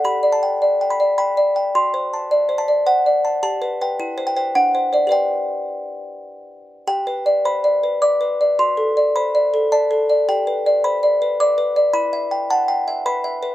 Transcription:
\new Staff \with { instrumentName = "Music box" } { \time 3/4 \key g \major \tempo 4 = 106 << { b''8 a''4 b''8 b''4 | c'''4. a''8 fis''4 | a''4. g''8 fis''4 | g''2~ g''8 r8 |
g''4 b''4 d'''4 | c'''4 b''4 a''4 | g''4 b''4 d'''4 | b''4 a''4 b''4 | } \\ { \tuplet 3/2 { g'8 d''8 g''8 d''8 g''8 d''8 g''8 d''8 g''8 } | \tuplet 3/2 { fis'8 c''8 a''8 d''8 c''8 d''8 c''8 d''8 a''8 } | \tuplet 3/2 { g'8 b'8 <b' g''>8 e'8 c''8 <c'' g''>8 d'8 c''8 <c'' d''>8 } | <g' b' d''>2. |
\tuplet 3/2 { g'8 b'8 d''8 c''8 d''8 b'8 d''8 b'8 d''8 } | \tuplet 3/2 { fis'8 a'8 d''8 c''8 d''8 a'8 d''8 a'8 d''8 } | \tuplet 3/2 { g'8 b'8 d''8 c''8 d''8 b'8 d''8 b'8 d''8 } | \tuplet 3/2 { e'8 e''8 g''8 fis''8 g''8 e''8 b'8 e''8 b'8 } | } >> }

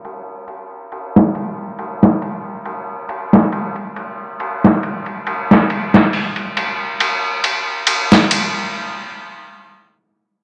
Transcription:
\new DrumStaff \with { instrumentName = "Drums" } \drummode { \time 4/4 \tempo 4 = 69 cymr8 cymr8 cymr16 sn16 cymr8 cymr16 sn16 cymr8 cymr8 cymr16 sn16 | cymr16 cymr16 cymr8 cymr16 sn16 cymr16 cymr16 cymr16 sn16 cymr16 sn16 hho16 cymr16 cymr8 | cymr8 cymr8 cymr16 sn16 cymr8 r4 r4 | }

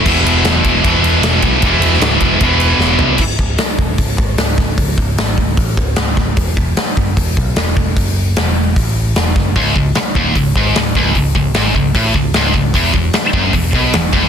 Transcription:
<<
  \new Staff \with { instrumentName = "Distorted electric guitar" } { \clef bass \time 4/4 \key cis \minor \tempo 4 = 151 <e, b, e>2 <e, b, e>2 | <e, b, e>2 <e, b, e>2 | r1 | r1 |
r1 | r1 | cis,8 cis,8 r8 dis,8 cis,8 gis,8 cis,8 cis,8 | cis,8 cis,8 gis,8 cis,8 a,8 cis,8 cis,8 cis,8 |
e,8 e,8 r8 fis,8 e,8 b,8 e,8 e,8 | }
  \new Staff \with { instrumentName = "Picked electric bass" } { \clef bass \time 4/4 \key cis \minor e,,8 e,,8 e,,8 e,,8 e,,8 e,,8 e,,8 b,,8 | e,,8 e,,8 cis,,8 e,,8 e,,4 e,,8 bis,,8 | cis,,8 cis,,8 r8 dis,,8 cis,,8 gis,,8 cis,,8 cis,,8 | cis,,8 cis,,8 gis,,8 cis,,8 a,,8 cis,,8 cis,,8 cis,,8 |
e,,8 e,,8 r8 fis,,8 e,,8 b,,8 e,,8 e,,8 | fis,,4 e,,4 a,,4 e,,8 fis,,8 | cis,,8 cis,,8 r8 dis,,8 cis,,8 gis,,8 cis,,8 cis,,8 | cis,,8 cis,,8 gis,,8 cis,,8 a,,8 cis,,8 cis,,8 cis,,8 |
e,,8 e,,8 r8 fis,,8 e,,8 b,,8 e,,8 e,,8 | }
  \new DrumStaff \with { instrumentName = "Drums" } \drummode { \time 4/4 <cymc bd>8 cymr8 <cymr sn>8 <bd cymr>8 <bd cymr>8 cymr8 <cymr sn>8 <bd cymr>8 | <bd cymr>8 cymr16 sn16 <cymr sn>8 <bd cymr>8 <bd cymr>8 cymr8 sn8 tomfh8 | <cymc bd>8 bd8 <hho sn>8 bd8 <hho bd>8 bd8 <hho sn>8 <bd sn>8 | <hho bd>8 bd8 <hho sn>8 bd8 <hho bd>8 bd8 <hho sn>8 <bd sn>8 |
<hho bd>8 bd8 <hho sn>8 bd8 <hho bd>8 bd8 <hho sn>8 bd8 | <hho bd>4 <hho sn>4 <hho bd>4 <hho sn>8 <bd sn>8 | <hho bd>8 bd8 <hho sn>8 bd8 <hho bd>8 bd8 <hho sn>8 <bd sn>8 | <hho bd>8 bd8 <hho sn>8 bd8 <hho bd>8 bd8 <hho sn>8 <bd sn>8 |
<hho bd>8 bd8 <hho sn>8 bd8 <hho bd>8 bd8 <hho sn>8 bd8 | }
>>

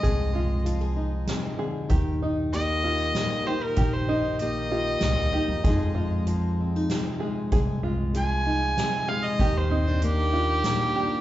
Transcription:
<<
  \new Staff \with { instrumentName = "Fiddle" } { \time 3/4 \key f \dorian \tempo 4 = 96 ees''4 r2 | r4 ees''4. c''16 bes'16~ | bes'16 c''8. ees''2~ | ees''4 r2 |
r4 aes''4. f''16 ees''16~ | ees''16 c''8. g'2 | }
  \new Staff \with { instrumentName = "Five-string banjo" } { \time 3/4 \key f \dorian aes'8 f'4 r4 aes'8 | g'8 ees'4 f'4 g'8 | g'8 ees'4 f'4 g'8 | aes'8 f'4 r4 aes'8 |
aes'8 f'4 r4 aes'8 | g'8 ees'4 f'4 g'8 | }
  \new Staff \with { instrumentName = "Steel-string acoustic guitar" } { \time 3/4 \key f \dorian << { <aes aes'>8 aes8 f'16 aes'16 ees'4. | g'8 ees'8 g'8 g'4 ees'8 | g'8 ees'8 g'8 g'4 ees'8 | <f aes ees' aes'>8 aes8 aes'8 c'16 ees'8. aes8 |
aes'8 aes8 aes'8 ees'4 aes8 | g'8 c'16 d'16 d'8 d'4 d'8 | } \\ { f,4 f4 c8 d8 | ees4 bes4 bes,4 | ees4 bes4 bes,4 | f,4 f4 c4 |
f,4 f4 c4 | ees4 bes4 bes,4 | } >> }
  \new Staff \with { instrumentName = "Upright bass" } { \clef bass \time 3/4 \key f \dorian c,2 r4 | ees,2 r4 | bes,,2 c,16 d,16 ees,16 f,16 | f,2 r4 |
c,2 r4 | ees,2 r4 | }
  \new DrumStaff \with { instrumentName = "Drums" } \drummode { \time 3/4 <hh bd>4 hh4 <hh sn>4 | <hh bd>4 hh4 <hh sn>4 | <hh bd>4 hh4 <hh sn>4 | <hh bd>4 hh4 <hh sn>4 |
<hh bd>4 hh4 <hh sn>4 | <hh bd>4 hh4 <hh sn>4 | }
>>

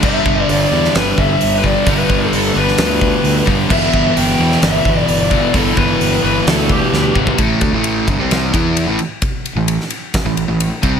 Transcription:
<<
  \new Staff \with { instrumentName = "Lead electric guitar" } { \time 4/4 \key e \minor \tempo 4 = 130 e''4 d''4 b'8 e''8.~ e''32 b'32 d''8 | b'4 a'8 b'2 r8 | e''4 g''4 e''4 d''4 | a'8 b'4 b'8 a'8 g'4 r8 |
\key a \minor r1 | r1 | }
  \new Staff \with { instrumentName = "Distorted electric guitar" } { \clef bass \time 4/4 \key e \minor <g, d g>1 | <g, d g>1 | <e, b, e>1 | <e, b, e>1 |
\key a \minor <a, e a>8 <d a>16 <a, e a>8. <g, d>16 <c g c'>8. <e b e'>8. <a, e>16 r8 | r8. <a, e>8 r4 <a, e>8 <a, e>8 r16 <c g c'>8 | }
  \new Staff \with { instrumentName = "Overdriven electric guitar" } { \clef bass \time 4/4 \key e \minor <g, d g>2.~ <g, d g>8 <g, d g>8 | <g, d g>2.~ <g, d g>8 <g, d g>8 | <e, b, e>2.~ <e, b, e>8 <e, b, e>8 | <e, b, e>2.~ <e, b, e>8 <e, b, e>8 |
\key a \minor <a, e a>8 <d a>16 <a, e a>8. <g, d>16 <c g c'>8. <e b e'>8. <a, e>16 r8 | r8. <a, e>8 r4 <a, e>8 <a, e>8 r16 <c g c'>8 | }
  \new Staff \with { instrumentName = "Distorted electric guitar" } { \clef bass \time 4/4 \key e \minor <g, d g>4. <g, d g>2~ <g, d g>8 | <g, d g>4. <g, d g>2~ <g, d g>8 | <e, b, e>4. <e, b, e>2~ <e, b, e>8 | <e, b, e>4. <e, b, e>2~ <e, b, e>8 |
\key a \minor r1 | r1 | }
  \new Staff \with { instrumentName = "Fingered electric bass" } { \clef bass \time 4/4 \key e \minor g,,8 g,,8 g,,8 e,8 g,,8 g,,8 g,,4 | g,,8 g,,8 g,,8 g,,8 d,4 d,8 g,,8 | g,,8 g,,8 g,,8 e,8 g,,8 g,,8 g,,4 | g,,8 g,,8 g,,8 g,,8 d,4 d,8 g,,8 |
\key a \minor a,,8 d,16 a,,8. g,,16 c,8. e,8. a,,16 r8 | r8. a,,8 r4 a,,8 a,,8 r16 c,8 | }
  \new DrumStaff \with { instrumentName = "Drums" } \drummode { \time 4/4 <cymc bd>8 bd8 hho8. sn16 <hho sn>8 bd8 hho8 bd8 | <hho bd>8 bd8 hho8. sn16 <hho sn>8 bd8 hho8 bd8 | <cymc bd>8 bd8 hho8. sn16 <hho sn>8 bd8 hho8 bd8 | <hho bd>8 bd8 hho4 <hho sn>8 bd8 sn8 bd16 bd16 |
<bd cymr>8 <bd cymr>8 cymr8 <bd cymr>8 <cymr sn>8 <bd cymr>8 cymr8 cymr8 | <bd cymr>8 cymr8 cymr16 sn16 cymr8 <bd cymr sn>8 cymr8 cymr8 <bd cymr>8 | }
>>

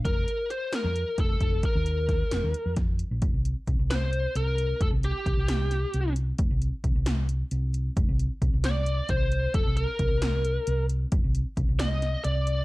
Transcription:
<<
  \new Staff \with { instrumentName = "Lead electric guitar" } { \time 7/8 \key f \mixolydian \tempo 4 = 133 bes'4 c''8 bes'4 a'4 | bes'2~ bes'8 r4 | r4. c''4 bes'4 | a'8 g'2~ g'8 r8 |
r2. r8 | r4. d''4 c''4 | a'8 bes'2~ bes'8 r8 | r4. ees''4 d''4 | }
  \new Staff \with { instrumentName = "Fingered electric bass" } { \clef bass \time 7/8 \key f \mixolydian f,,8 r4 r16 f,8 r16 f,,8 f,,8 | r16 ees,4~ ees,16 f,,16 ees,16 r16 f,4 bes,,16 | f,,16 c,8 r16 c,16 c,4~ c,16 c,4 | f,,16 c,8 r16 c,16 c,4~ c,16 c,4 |
f,,16 c,8 r16 c,16 c,4~ c,16 c,4 | f,,16 c,8 r16 c,16 c,4~ c,16 c,4 | f,,16 c,8 r16 c,16 c,4~ c,16 c,4 | f,,16 c,8 r16 c,16 c,4~ c,16 c,4 | }
  \new DrumStaff \with { instrumentName = "Drums" } \drummode { \time 7/8 <hh bd>8 hh8 hh8 <hh sn>8 hh8 <hh bd>8 <hh bd>8 | <hh bd>8 hh8 <hh bd sn>8 <hh sn>8 hh8 <hh bd sn>8 hh8 | <hh bd>8 hh8 <hh bd>8 <hh sn>8 hh8 hh8 hh8 | <hh bd>8 hh8 <hh bd>8 <hh sn>8 <hh sn>8 hh8 hh8 |
<hh bd>8 hh8 <hh bd>8 <hh sn>8 hh8 hh8 hh8 | <hh bd>8 hh8 <hh bd>8 <hh sn>8 hh8 <hh bd>8 hh8 | <hh bd>8 hh8 <hh bd>8 <hh sn>8 hh8 hh8 hh8 | <hh bd>8 hh8 <hh bd>8 <hh sn>8 <hh sn>8 hh8 hh8 | }
>>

